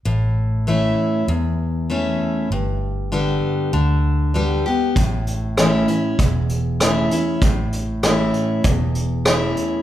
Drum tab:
HH |--------|--------|xxxxxxxx|xxxxxxxx|
SD |--------|--------|--r---r-|--r---r-|
BD |--------|--------|o---o---|o---o---|